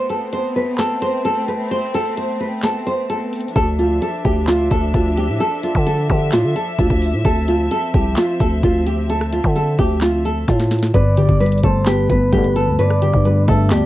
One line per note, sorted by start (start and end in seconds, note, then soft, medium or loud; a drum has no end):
0.00 3.52 A3 medium
0.00 3.52 B3 medium
0.00 3.52 C4 medium
0.09 0.30 A4 medium
0.09 closed hi-hat medium
0.33 0.53 C5 medium
0.33 closed hi-hat medium
0.56 0.76 B4 medium
0.78 0.99 A4 medium
0.78 snare loud
0.78 clap medium
0.78 closed hi-hat medium
1.02 1.22 C5 medium
1.02 closed hi-hat medium
1.25 1.45 A4 medium
1.25 closed hi-hat medium
1.48 1.68 B4 medium
1.48 closed hi-hat medium
1.71 1.92 C5 loud
1.71 closed hi-hat medium
1.94 2.15 A4 medium
1.94 closed hi-hat medium
2.17 2.38 C5 medium
2.17 closed hi-hat medium
2.40 2.61 B4 medium
2.63 2.84 A4 medium
2.63 snare loud
2.63 clap medium
2.63 closed hi-hat medium
2.87 3.07 C5 medium
2.87 closed hi-hat medium
3.10 3.53 A4 medium
3.10 closed hi-hat medium
3.33 closed hi-hat soft
3.33 open hi-hat medium
3.40 closed hi-hat medium
3.48 closed hi-hat medium
3.56 4.00 D2 loud
3.56 10.90 F3 medium
3.56 7.21 D4 medium
3.56 3.76 A4 loud
3.56 10.90 E5 medium
3.56 kick loud
3.56 closed hi-hat medium
3.79 3.99 F4 medium
3.79 closed hi-hat medium
4.02 4.22 A4 medium
4.02 closed hi-hat medium
4.25 4.69 D2 loud
4.25 4.45 G4 medium
4.25 kick loud
4.47 4.68 F4 medium
4.47 snare loud
4.47 clap medium
4.47 closed hi-hat medium
4.71 4.93 D2 loud
4.71 4.92 A4 medium
4.71 kick loud
4.71 closed hi-hat medium
4.94 5.30 D2 loud
4.94 5.15 F4 medium
4.94 kick loud
4.94 closed hi-hat medium
5.17 5.38 G4 medium
5.17 closed hi-hat medium
5.29 5.40 A2 loud
5.40 5.61 A4 loud
5.40 closed hi-hat medium
5.63 5.84 F4 medium
5.63 closed hi-hat medium
5.75 6.08 D3 loud
5.75 kick loud
5.87 6.07 A4 medium
5.87 closed hi-hat medium
6.10 6.34 D3 loud
6.10 6.30 G4 medium
6.10 kick loud
6.32 6.46 A2 loud
6.32 6.53 F4 medium
6.32 snare loud
6.32 clap medium
6.32 closed hi-hat medium
6.44 6.55 D3 loud
6.56 6.76 A4 medium
6.56 closed hi-hat medium
6.79 6.90 D2 loud
6.79 7.22 F4 medium
6.79 kick loud
6.79 closed hi-hat medium
6.90 7.15 D2 loud
6.90 kick medium
7.02 open hi-hat medium
7.13 7.24 A2 loud
7.25 7.69 D2 loud
7.25 10.91 C4 medium
7.25 7.45 A4 loud
7.25 kick loud
7.25 closed hi-hat medium
7.48 7.69 F4 medium
7.48 closed hi-hat medium
7.71 7.92 A4 medium
7.71 closed hi-hat medium
7.94 8.16 C2 loud
7.94 8.15 G4 medium
7.94 kick loud
8.17 8.38 F4 medium
8.17 snare loud
8.17 clap medium
8.17 closed hi-hat medium
8.40 8.62 D2 loud
8.40 8.61 A4 medium
8.40 kick loud
8.40 closed hi-hat medium
8.63 9.41 D2 loud
8.63 8.84 F4 medium
8.63 kick loud
8.63 closed hi-hat medium
8.87 9.07 G4 medium
8.87 closed hi-hat medium
9.10 9.30 A4 medium
9.10 closed hi-hat medium
9.21 cross-stick loud
9.33 9.53 F4 medium
9.33 closed hi-hat medium
9.44 9.77 D3 loud
9.44 kick loud
9.56 9.76 A4 medium
9.56 closed hi-hat medium
9.79 10.45 D2 loud
9.79 9.99 G4 medium
9.79 kick loud
9.79 cross-stick medium
10.01 10.22 F4 loud
10.01 snare loud
10.01 clap medium
10.01 closed hi-hat medium
10.25 10.45 A4 medium
10.25 closed hi-hat medium
10.48 10.92 A2 loud
10.48 10.91 F4 medium
10.48 kick loud
10.48 snare medium
10.48 closed hi-hat medium
10.60 snare medium
10.71 snare medium
10.71 closed hi-hat soft
10.71 open hi-hat medium
10.79 snare medium
10.79 closed hi-hat medium
10.86 closed hi-hat medium
10.94 11.27 G1 loud
10.94 12.10 G2 loud
10.94 11.15 B4 loud
10.94 11.59 D5 loud
10.94 kick loud
10.94 closed hi-hat medium
11.17 12.33 D3 medium
11.17 11.38 G4 medium
11.17 closed hi-hat medium
11.29 11.62 G1 loud
11.29 kick loud
11.40 12.31 G3 medium
11.40 11.61 B4 medium
11.40 closed hi-hat soft
11.46 closed hi-hat medium
11.52 closed hi-hat medium
11.58 closed hi-hat medium
11.63 12.08 G1 loud
11.63 12.08 A3 medium
11.63 11.84 A4 medium
11.63 11.86 C5 medium
11.63 kick loud
11.63 closed hi-hat medium
11.86 13.02 B3 loud
11.86 12.07 G4 medium
11.86 12.75 B4 loud
11.86 snare loud
11.86 clap medium
11.86 closed hi-hat medium
12.10 12.32 G1 loud
12.10 13.25 A3 medium
12.10 12.30 B4 medium
12.10 kick loud
12.10 closed hi-hat medium
12.33 12.69 G1 loud
12.33 12.47 A2 loud
12.33 12.47 B2 loud
12.33 12.47 D3 loud
12.33 13.24 G3 medium
12.33 12.53 G4 medium
12.33 kick loud
12.33 closed hi-hat medium
12.44 closed hi-hat soft
12.56 13.01 D3 medium
12.56 12.76 A4 medium
12.56 closed hi-hat medium
12.67 12.78 D2 loud
12.79 13.86 G2 medium
12.79 12.99 B4 loud
12.79 13.44 D5 loud
12.79 closed hi-hat medium
12.90 cross-stick loud
13.02 13.86 D3 medium
13.02 13.22 G4 medium
13.02 closed hi-hat medium
13.13 13.47 G2 loud
13.13 kick loud
13.25 13.86 G3 loud
13.25 13.46 B4 medium
13.25 closed hi-hat medium
13.48 13.73 G2 loud
13.48 13.86 A3 loud
13.48 13.69 A4 medium
13.48 13.70 E5 medium
13.48 kick loud
13.48 cross-stick medium
13.48 open hi-hat medium
13.70 13.84 D2 loud
13.70 13.86 B3 loud
13.70 13.86 G4 medium
13.70 13.86 D5 loud
13.70 snare loud
13.70 clap medium
13.70 closed hi-hat medium
13.83 13.86 G2 loud